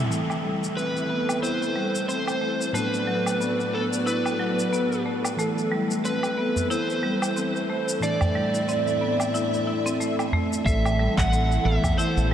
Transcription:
0.09 E3 A3 E4 A4, shaker
0.30 low woodblock, shaker
0.44 G3
0.64 shaker
0.77 C4 B4, shaker
0.97 shaker
1.10 B3
1.29 low woodblock, shaker
1.43 E4 C5, shaker
1.63 shaker
1.76 G3
1.95 shaker
2.08 C4 C5, shaker
2.27 low woodblock, shaker
2.41 A3
2.61 shaker
2.73 A2 F#3 A3 B3 D4 F#4 B4 D5, shaker
2.94 shaker
3.07 F#3
3.26 low woodblock, shaker
3.40 B3, shaker
3.60 shaker
3.73 B3 A4
3.93 shaker
4.06 E4 B4, shaker
4.26 low woodblock, shaker
4.40 F#3
4.59 shaker
4.72 B3, shaker
4.93 shaker
5.06 A3
5.25 low woodblock, shaker
5.37 E3 A3 E4, shaker
5.41 A4
5.58 shaker
5.72 G3
5.91 shaker
6.05 C4 B4, shaker
6.23 low woodblock, shaker
6.38 B3
6.56 udu, shaker
6.70 E4 C5, shaker
6.90 shaker
7.03 G3
7.22 low woodblock, shaker
7.36 C4, shaker
7.56 shaker
7.70 A3
7.89 shaker
8.00 A2 D3 E3 A3 D4 A4 D5 E5, shaker
8.21 udu, low woodblock, shaker
8.35 G3
8.55 shaker
8.69 C4, shaker
8.88 shaker
9.01 B3
9.20 low woodblock, shaker
9.34 E4, shaker
9.54 shaker
9.67 E4
9.86 C4, shaker
10.00 A3, shaker
10.19 low woodblock, shaker
10.33 A3, udu
10.53 shaker
10.64 A1 E3 A3 C4 E4 A4 E5, kick, shaker
10.85 low woodblock, shaker
10.99 G3
11.18 A1 F#5, kick, clap, shaker
11.32 C4, shaker
11.52 shaker
11.64 A1 E3 A3 B3 A4 E5
11.84 kick, udu, low woodblock, shaker
11.98 E4 C5, shaker
12.17 A1, shaker

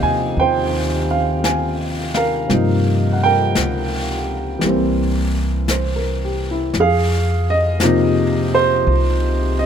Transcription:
Already playing: C3 F3 A#3 D#4 C5 D#5 F5 G5
0.02 D#2 G#5
0.37 D#2 G5, brush sweep
0.41 C5
1.11 F5
1.44 G#5, brush sweep, snare, hi-hat pedal
2.14 A#4 F5, snare
2.48 G2 C3 F3 A#3, brush sweep, snare
2.53 D#4
3.13 F#5
3.23 A#4 G5
3.55 C#2, brush sweep, snare, hi-hat pedal
4.59 C2 E3 G3, brush sweep, snare
4.66 A#3 C4
5.68 C5, brush sweep, snare, hi-hat pedal
5.96 A#4
6.25 G4
6.51 E4
6.74 F2, brush sweep, snare
6.80 G#4 F5
7.50 D#5
7.80 C3 F3 A#3 D#4, brush sweep, snare, hi-hat pedal
8.55 C5
8.87 C2, brush sweep
9.59 D#5

